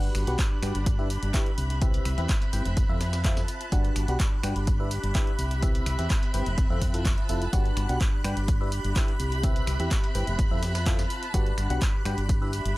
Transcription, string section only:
Already playing: D4
0.00 G4 B5
1.22 E5
1.82 C4
3.01 F4
3.20 A5
3.72 D4
3.95 G4
4.15 B5
5.00 E5
5.62 C4
6.74 F4
7.01 A5
7.53 D4
7.70 G4
7.96 B5
8.78 E5
9.43 C4
10.77 F4
10.82 A5
11.34 D4
11.46 G4
11.77 B5
12.41 E5

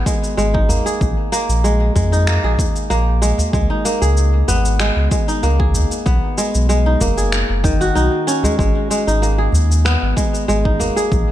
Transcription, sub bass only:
0.37 G#1
1.01 A#1
1.49 A#1
1.96 F2
2.44 A#1
2.90 A#1
3.53 C#2
4.02 C#2
4.48 G#1
4.96 C#2
5.43 C#2
6.06 B1
6.55 B1
7.01 F#1
7.49 F#1
7.96 B1
8.59 G#1
9.07 G#1
9.54 D#2
10.02 G#1
10.49 G#1
11.12 A#1

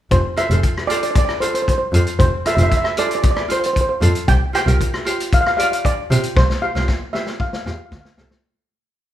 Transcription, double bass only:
0.12 F1
0.50 F1
1.92 F2
2.19 F1
2.57 F1
4.01 F2
4.28 C2
4.67 C2
6.10 C3
6.36 C2
6.76 C2
7.66 E2
7.92 D2
8.18 C2

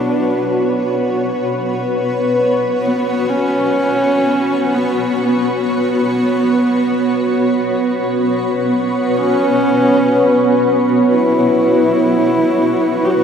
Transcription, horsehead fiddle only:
Already playing: D4
2.83 B3
3.30 C#4
4.75 B3
5.22 B3
9.18 C#4
11.14 E4
13.05 G4
13.11 F#4

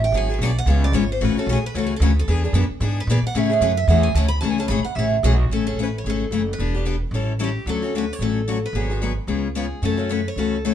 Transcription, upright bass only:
Already playing: A1
0.12 G#1
0.38 B1
0.66 C#2
0.92 G#1
1.21 A1
1.35 muted upright bass stroke
1.46 B1
1.75 C#2
2.00 D2
2.28 E2
2.53 F#2
2.70 muted upright bass stroke
2.80 G#2
3.07 A#2
3.22 muted upright bass stroke
3.35 A2
3.61 F#2
3.88 E2
4.14 D2
4.42 C#2
4.68 G#1
4.83 muted upright bass stroke
4.96 A1
5.23 B1
5.50 A1
5.77 A1
6.04 G#1
6.31 F#1
6.58 E1
7.11 A1
7.66 D2
8.19 A1
8.73 G#1
9.27 C#2
9.82 F#2
10.36 C#2

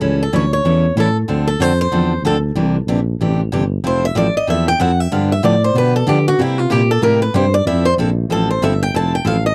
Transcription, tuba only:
0.01 C#2
0.33 D2
0.64 E2
0.96 A2
1.29 D2
1.60 F2
1.92 E2
2.22 D2
2.55 C2
2.87 A#1
3.20 A1
3.53 G1
3.84 F1
4.15 A1
4.34 A1
4.48 E2
4.79 F2
5.12 G2
5.43 A2
5.74 B2
6.07 D3
6.38 C3
6.70 A#2
7.02 A2
7.34 G2
7.66 F2
7.97 A#1
8.29 A1
8.61 G1
8.93 F1
9.25 A1

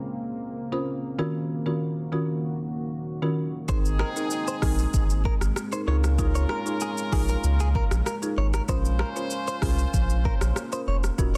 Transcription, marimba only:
0.72 C#4 F4 A#4 C5
1.18 D#3 C#4 F4 F#4 A#4
1.66 D#3 C#4 F4 F#4 A#4
2.12 D#3 C#4 F4 F#4 A#4
3.22 D#3 C#4 F4 F#4 A#4
3.68 C4 D#4 G#4 A#4
4.16 C4 D#4 G#4 A#4
4.62 C4 D#4 G#4 A#4
5.72 C4 D#4 G#4 A#4
5.87 D#4 F4 G#4 A#4
6.18 D#4 F4 G#4 A#4
6.66 D#4 F4 G#4 A#4
7.12 D#4 F4 G#4 A#4
8.22 D#4 F4 G#4 A#4
8.68 C#4 F4 A#4 C5
9.16 C#4 F4 A#4 C5
9.62 C#4 F4 A#4 C5
10.72 C#4 F4 A#4 C5
11.18 C#4 F4 F#4 A#4

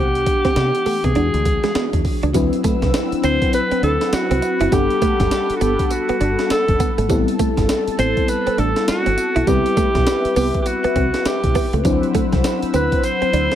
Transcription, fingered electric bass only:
Already playing: C2
0.56 C3
0.86 muted fingered electric bass stroke
1.04 C3
1.16 E2
1.34 D2
1.75 muted fingered electric bass stroke
1.93 E2
2.23 C#2
2.35 D2
2.83 C2
3.12 muted fingered electric bass stroke
3.24 D2
3.72 muted fingered electric bass stroke
3.83 D2
4.13 muted fingered electric bass stroke
4.31 C2
4.61 F#1
4.72 G1
5.20 F#1
5.50 muted fingered electric bass stroke
5.61 G1
6.09 muted fingered electric bass stroke
6.21 G1
6.50 muted fingered electric bass stroke
6.68 F#1
6.98 G#1
7.10 A1
7.58 G1
7.87 muted fingered electric bass stroke
7.99 A1
8.47 muted fingered electric bass stroke
8.59 A1
8.88 muted fingered electric bass stroke
9.07 G1
9.36 B1
9.47 C2
9.95 B1
10.25 muted fingered electric bass stroke
10.36 C2
10.84 muted fingered electric bass stroke
10.96 C2
11.25 muted fingered electric bass stroke
11.44 B1
11.73 C#2
11.85 D2
12.33 C2
12.63 muted fingered electric bass stroke
12.74 D2
13.22 muted fingered electric bass stroke
13.33 D2

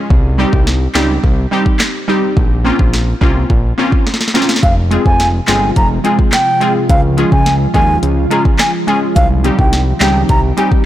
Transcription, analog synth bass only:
0.10 C2
0.53 C2
0.95 C#2
1.24 C2
2.37 A#1
2.79 A#1
3.21 C2
3.50 A#1
4.63 F1
5.06 F1
5.48 G1
5.76 F1
6.90 C#2
7.32 C#2
7.74 D#2
8.03 C#2
9.16 C2
9.59 C2
10.01 C#2
10.29 C2

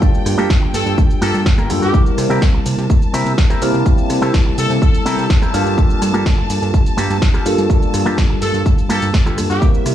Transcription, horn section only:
0.74 A4
1.22 A4
1.82 G4
4.58 A4
4.82 A4
8.42 A4
8.90 A4
9.50 G4

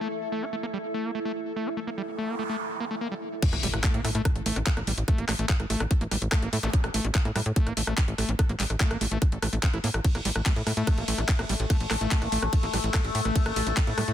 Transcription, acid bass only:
0.01 A3
0.32 A3
0.42 E4
0.53 A3
0.63 A#3
0.73 G3
0.94 A3
1.05 A#3
1.15 A3
1.25 A3
1.56 A3
1.67 E4
1.77 A3
1.87 A#3
1.98 G3
2.18 A3
2.29 A#3
2.39 A3
2.49 A3
2.80 A#3
2.91 A3
3.01 A#3
3.11 G3
3.42 A3
3.53 A#3
3.63 G3
3.84 A3
3.94 A#3
4.05 A3
4.15 A3
4.46 A3
4.56 E4
4.67 A3
4.77 A#3
4.87 G3
5.08 A3
5.18 A#3
5.29 A3
5.39 A3
5.70 A3
5.80 E4
5.91 A3
6.01 A#3
6.11 G3
6.32 A3
6.42 A#3
6.53 A3
6.63 A3
6.94 A3
7.05 E4
7.15 A3
7.25 A#3
7.36 G3
7.56 A3
7.67 A#3
7.77 A3
7.87 A3
8.18 A3
8.29 E4
8.39 A3
8.49 A#3
8.60 G3
8.80 A3
8.91 A#3
9.01 A3
9.11 A3
9.42 A3
9.53 A3
9.63 C4
9.73 E4
9.84 A#3
10.04 A3
10.15 A#3
10.25 G3
10.46 A3
10.67 A3
10.77 A3
10.98 A#3
11.08 A3
11.18 E4
11.29 A3
11.39 A#3
11.49 G3
11.70 A3
11.91 A3
12.01 A3
12.22 A#3
12.32 A3
12.43 E4
12.53 A3
12.63 A#3
12.74 G3
12.94 A3
13.15 A3
13.25 A3
13.46 A#3
13.56 A3
13.67 E4
13.77 A3
13.87 A#3
13.98 G3

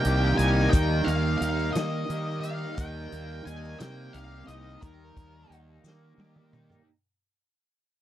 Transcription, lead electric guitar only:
Already playing: G5
0.38 G#5
0.70 G5
1.04 F5
1.38 F5
1.73 D#5
2.40 F5
2.75 G5
3.45 G#5
3.80 G5
4.13 F5
4.47 D#5
4.81 A#4

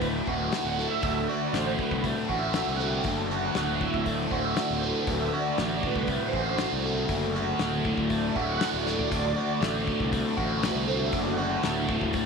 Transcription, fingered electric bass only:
Already playing: D1
0.27 D1
0.64 D1
1.03 D1
1.53 A1
1.91 C2
2.29 A1
2.67 C2
3.05 F#1
3.56 D1
3.94 D1
4.31 D1
4.70 D1
5.07 D1
5.59 A1
5.95 C2
6.33 A1
6.72 C2
7.09 F#1
7.60 D1
7.98 D1
8.36 D1
8.73 D1
9.12 D1
9.61 A1
10.00 C2
10.38 A1
10.75 C2
11.13 F#1
11.65 D1
12.02 D1

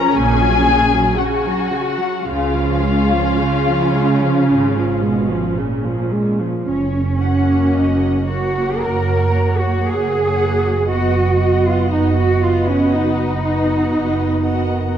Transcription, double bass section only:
0.14 A#1
2.28 C#2
4.49 G#1
6.67 F#1
7.75 F#1
8.80 F#1
9.84 F#1
10.87 F#1
11.91 F#1
12.93 F#1
13.93 F#1

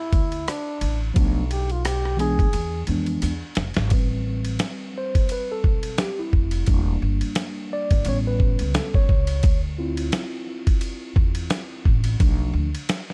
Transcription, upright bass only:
0.13 D2
0.81 A1
1.16 B1
2.39 D2
2.54 E2
2.88 F2
3.23 E2
3.57 F1
3.77 G#1
3.91 A1
5.64 B1
6.33 F1
6.68 E1
7.02 G1
7.91 G1
8.06 A1
8.61 C#2
9.09 C#2
9.44 D2
11.16 E2
11.86 A1
12.20 B1
12.53 D2

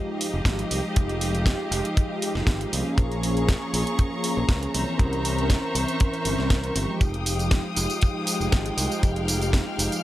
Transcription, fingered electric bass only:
0.34 F1
0.45 G#1
0.71 C2
0.97 F1
1.71 F1
2.35 F1
2.46 G#1
2.73 C2
2.98 A#1
3.73 A#1
4.37 A#1
4.48 C#2
4.75 C2
4.99 C2
5.75 C2
6.25 G1
6.39 C2
6.76 G1
7.01 F1
7.77 F1
8.40 F1
8.53 G#1
8.77 C2
9.03 F1
9.78 F1

